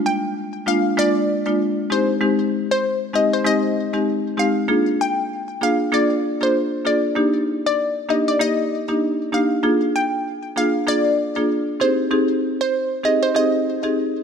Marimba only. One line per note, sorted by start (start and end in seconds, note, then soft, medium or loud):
0.00 0.31 G#3 loud
0.00 0.31 A#3 medium
0.00 0.32 D4 medium
0.00 0.32 F4 loud
0.66 0.91 G#3 medium
0.66 0.91 A#3 medium
0.66 0.91 D4 medium
0.66 0.91 F4 medium
0.97 1.42 G#3 medium
0.97 1.42 A#3 medium
0.97 1.42 D4 medium
0.97 1.42 F4 loud
1.46 1.87 G#3 medium
1.46 1.87 A#3 medium
1.46 1.87 D4 medium
1.46 1.87 F4 medium
1.90 2.19 G#3 medium
1.90 2.19 C4 medium
1.90 2.19 D#4 medium
1.90 2.19 G4 medium
2.21 2.79 G#3 loud
2.21 2.79 C4 medium
2.21 2.79 D#4 medium
2.21 2.79 G4 loud
3.14 3.38 G#3 medium
3.14 3.38 C4 medium
3.14 3.38 D#4 medium
3.14 3.39 G4 medium
3.45 3.89 G#3 medium
3.45 3.89 C4 medium
3.45 3.90 D#4 medium
3.45 3.90 G4 loud
3.93 4.34 G#3 medium
3.93 4.34 C4 medium
3.93 4.35 D#4 medium
3.93 4.35 G4 medium
4.37 4.66 G#3 medium
4.37 4.66 C4 medium
4.37 4.67 D#4 medium
4.37 4.67 G4 medium
4.68 5.26 A#3 medium
4.68 5.26 D4 medium
4.68 5.26 F4 medium
4.68 5.26 G#4 loud
5.61 5.86 A#3 medium
5.61 5.86 D4 medium
5.61 5.86 F4 medium
5.61 5.86 G#4 medium
5.92 6.37 A#3 medium
5.92 6.37 D4 medium
5.92 6.37 F4 medium
5.92 6.37 G#4 loud
6.41 6.82 A#3 medium
6.41 6.82 D4 medium
6.41 6.82 F4 medium
6.41 6.82 G#4 medium
6.85 7.14 A#3 medium
6.85 7.14 D4 medium
6.85 7.14 F4 medium
6.85 7.14 G#4 medium
7.16 7.74 A#3 medium
7.16 7.74 D4 medium
7.16 7.74 D#4 medium
7.16 7.74 G4 loud
8.09 8.33 A#3 medium
8.09 8.33 D4 medium
8.09 8.33 D#4 medium
8.09 8.34 G4 medium
8.39 8.84 A#3 medium
8.39 8.84 D#4 medium
8.39 8.85 G4 loud
8.88 9.29 A#3 medium
8.88 9.29 D4 medium
8.88 9.30 D#4 medium
8.88 9.30 G4 medium
9.32 9.61 A#3 medium
9.32 9.61 D4 medium
9.32 9.62 D#4 medium
9.32 9.62 G4 medium
9.63 10.21 A#3 loud
9.63 10.21 D4 medium
9.63 10.21 F4 medium
9.63 10.21 G#4 loud
10.56 10.81 A#3 medium
10.56 10.81 D4 medium
10.56 10.81 F4 medium
10.56 10.81 G#4 medium
10.87 11.32 A#3 medium
10.87 11.32 D4 medium
10.87 11.32 F4 medium
10.87 11.32 G#4 loud
11.36 11.77 A#3 medium
11.36 11.77 D4 medium
11.36 11.77 F4 medium
11.36 11.77 G#4 medium
11.80 12.09 C4 medium
11.80 12.09 D#4 medium
11.80 12.09 G4 medium
11.80 12.09 G#4 medium
12.11 12.69 C4 medium
12.11 12.69 D#4 medium
12.11 12.69 G4 medium
12.11 12.69 G#4 loud
13.03 13.28 C4 medium
13.03 13.28 D#4 medium
13.03 13.28 G4 medium
13.03 13.28 G#4 medium
13.34 13.79 C4 loud
13.34 13.79 D#4 medium
13.34 13.79 G4 medium
13.34 13.79 G#4 loud
13.83 14.23 C4 medium
13.83 14.23 D#4 medium
13.83 14.23 G4 medium
13.83 14.23 G#4 medium